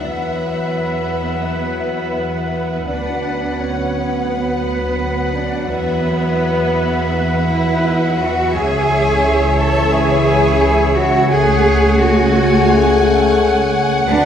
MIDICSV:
0, 0, Header, 1, 10, 480
1, 0, Start_track
1, 0, Key_signature, 3, "minor"
1, 0, Tempo, 705882
1, 44, Time_signature, 4, 2, 24, 8
1, 6283, Tempo, 692042
1, 9760, End_track
2, 0, Start_track
2, 0, Title_t, "Cor anglais"
2, 0, Program_c, 0, 69
2, 48, Note_on_c, 0, 78, 60
2, 1934, Note_off_c, 0, 78, 0
2, 1959, Note_on_c, 0, 78, 57
2, 2717, Note_off_c, 0, 78, 0
2, 2920, Note_on_c, 0, 78, 64
2, 3850, Note_off_c, 0, 78, 0
2, 3873, Note_on_c, 0, 78, 69
2, 5776, Note_off_c, 0, 78, 0
2, 5802, Note_on_c, 0, 76, 82
2, 7689, Note_off_c, 0, 76, 0
2, 7721, Note_on_c, 0, 78, 89
2, 9760, Note_off_c, 0, 78, 0
2, 9760, End_track
3, 0, Start_track
3, 0, Title_t, "Violin section"
3, 0, Program_c, 1, 48
3, 0, Note_on_c, 1, 78, 55
3, 1932, Note_off_c, 1, 78, 0
3, 1956, Note_on_c, 1, 78, 65
3, 5776, Note_off_c, 1, 78, 0
3, 5801, Note_on_c, 1, 76, 85
3, 7689, Note_off_c, 1, 76, 0
3, 7717, Note_on_c, 1, 80, 95
3, 9612, Note_off_c, 1, 80, 0
3, 9637, Note_on_c, 1, 78, 93
3, 9760, Note_off_c, 1, 78, 0
3, 9760, End_track
4, 0, Start_track
4, 0, Title_t, "Violin section"
4, 0, Program_c, 2, 48
4, 0, Note_on_c, 2, 76, 50
4, 1933, Note_off_c, 2, 76, 0
4, 1960, Note_on_c, 2, 78, 62
4, 3850, Note_off_c, 2, 78, 0
4, 3879, Note_on_c, 2, 76, 72
4, 7692, Note_off_c, 2, 76, 0
4, 7724, Note_on_c, 2, 78, 96
4, 9760, Note_off_c, 2, 78, 0
4, 9760, End_track
5, 0, Start_track
5, 0, Title_t, "Flute section"
5, 0, Program_c, 3, 73
5, 32, Note_on_c, 3, 71, 71
5, 1774, Note_off_c, 3, 71, 0
5, 1949, Note_on_c, 3, 74, 72
5, 2434, Note_on_c, 3, 73, 66
5, 2437, Note_off_c, 3, 74, 0
5, 2906, Note_off_c, 3, 73, 0
5, 2917, Note_on_c, 3, 71, 81
5, 3636, Note_off_c, 3, 71, 0
5, 3641, Note_on_c, 3, 74, 74
5, 3874, Note_on_c, 3, 71, 91
5, 3879, Note_off_c, 3, 74, 0
5, 4900, Note_off_c, 3, 71, 0
5, 5088, Note_on_c, 3, 76, 88
5, 5556, Note_off_c, 3, 76, 0
5, 5564, Note_on_c, 3, 78, 97
5, 5798, Note_on_c, 3, 80, 102
5, 5804, Note_off_c, 3, 78, 0
5, 6511, Note_on_c, 3, 81, 102
5, 6516, Note_off_c, 3, 80, 0
5, 6749, Note_off_c, 3, 81, 0
5, 6758, Note_on_c, 3, 80, 104
5, 7473, Note_on_c, 3, 78, 102
5, 7477, Note_off_c, 3, 80, 0
5, 7709, Note_on_c, 3, 80, 110
5, 7711, Note_off_c, 3, 78, 0
5, 8196, Note_off_c, 3, 80, 0
5, 8196, Note_on_c, 3, 78, 91
5, 8915, Note_off_c, 3, 78, 0
5, 9636, Note_on_c, 3, 74, 106
5, 9760, Note_off_c, 3, 74, 0
5, 9760, End_track
6, 0, Start_track
6, 0, Title_t, "Clarinet"
6, 0, Program_c, 4, 71
6, 43, Note_on_c, 4, 76, 58
6, 1961, Note_on_c, 4, 71, 61
6, 1971, Note_off_c, 4, 76, 0
6, 2733, Note_off_c, 4, 71, 0
6, 2924, Note_on_c, 4, 71, 69
6, 3852, Note_off_c, 4, 71, 0
6, 3886, Note_on_c, 4, 71, 80
6, 5783, Note_off_c, 4, 71, 0
6, 5810, Note_on_c, 4, 73, 86
6, 9641, Note_on_c, 4, 71, 90
6, 9651, Note_off_c, 4, 73, 0
6, 9760, Note_off_c, 4, 71, 0
6, 9760, End_track
7, 0, Start_track
7, 0, Title_t, "Viola section"
7, 0, Program_c, 5, 48
7, 40, Note_on_c, 5, 71, 46
7, 3848, Note_off_c, 5, 71, 0
7, 3878, Note_on_c, 5, 71, 63
7, 5779, Note_off_c, 5, 71, 0
7, 5798, Note_on_c, 5, 73, 73
7, 7715, Note_off_c, 5, 73, 0
7, 7715, Note_on_c, 5, 57, 85
7, 9610, Note_off_c, 5, 57, 0
7, 9643, Note_on_c, 5, 71, 73
7, 9760, Note_off_c, 5, 71, 0
7, 9760, End_track
8, 0, Start_track
8, 0, Title_t, "Cello section"
8, 0, Program_c, 6, 48
8, 41, Note_on_c, 6, 59, 73
8, 1931, Note_off_c, 6, 59, 0
8, 1955, Note_on_c, 6, 62, 74
8, 2430, Note_off_c, 6, 62, 0
8, 2442, Note_on_c, 6, 61, 75
8, 2918, Note_on_c, 6, 59, 76
8, 2919, Note_off_c, 6, 61, 0
8, 3633, Note_on_c, 6, 62, 84
8, 3636, Note_off_c, 6, 59, 0
8, 3875, Note_off_c, 6, 62, 0
8, 3876, Note_on_c, 6, 59, 99
8, 5088, Note_off_c, 6, 59, 0
8, 5088, Note_on_c, 6, 64, 98
8, 5556, Note_off_c, 6, 64, 0
8, 5566, Note_on_c, 6, 66, 102
8, 5802, Note_on_c, 6, 68, 120
8, 5805, Note_off_c, 6, 66, 0
8, 6517, Note_on_c, 6, 69, 115
8, 6519, Note_off_c, 6, 68, 0
8, 6752, Note_on_c, 6, 68, 112
8, 6757, Note_off_c, 6, 69, 0
8, 7474, Note_off_c, 6, 68, 0
8, 7477, Note_on_c, 6, 66, 111
8, 7712, Note_on_c, 6, 68, 126
8, 7718, Note_off_c, 6, 66, 0
8, 8188, Note_off_c, 6, 68, 0
8, 8199, Note_on_c, 6, 66, 111
8, 8917, Note_off_c, 6, 66, 0
8, 9632, Note_on_c, 6, 62, 127
8, 9760, Note_off_c, 6, 62, 0
8, 9760, End_track
9, 0, Start_track
9, 0, Title_t, "French horn section"
9, 0, Program_c, 7, 60
9, 0, Note_on_c, 7, 54, 49
9, 0, Note_on_c, 7, 64, 46
9, 1934, Note_off_c, 7, 54, 0
9, 1936, Note_off_c, 7, 64, 0
9, 1955, Note_on_c, 7, 54, 57
9, 1955, Note_on_c, 7, 59, 62
9, 3847, Note_off_c, 7, 59, 0
9, 3875, Note_on_c, 7, 64, 66
9, 5682, Note_off_c, 7, 54, 0
9, 5682, Note_off_c, 7, 64, 0
9, 5798, Note_on_c, 7, 52, 96
9, 5798, Note_on_c, 7, 64, 96
9, 7687, Note_off_c, 7, 52, 0
9, 7687, Note_off_c, 7, 64, 0
9, 7714, Note_on_c, 7, 57, 93
9, 7715, Note_on_c, 7, 68, 97
9, 9610, Note_off_c, 7, 57, 0
9, 9610, Note_off_c, 7, 68, 0
9, 9632, Note_on_c, 7, 59, 96
9, 9632, Note_on_c, 7, 66, 98
9, 9760, Note_off_c, 7, 59, 0
9, 9760, Note_off_c, 7, 66, 0
9, 9760, End_track
10, 0, Start_track
10, 0, Title_t, "Double bass section"
10, 0, Program_c, 8, 48
10, 41, Note_on_c, 8, 40, 51
10, 1955, Note_on_c, 8, 38, 62
10, 1958, Note_off_c, 8, 40, 0
10, 3847, Note_off_c, 8, 38, 0
10, 3875, Note_on_c, 8, 40, 75
10, 5777, Note_off_c, 8, 40, 0
10, 5800, Note_on_c, 8, 37, 83
10, 9637, Note_on_c, 8, 38, 92
10, 9638, Note_off_c, 8, 37, 0
10, 9760, Note_off_c, 8, 38, 0
10, 9760, End_track
0, 0, End_of_file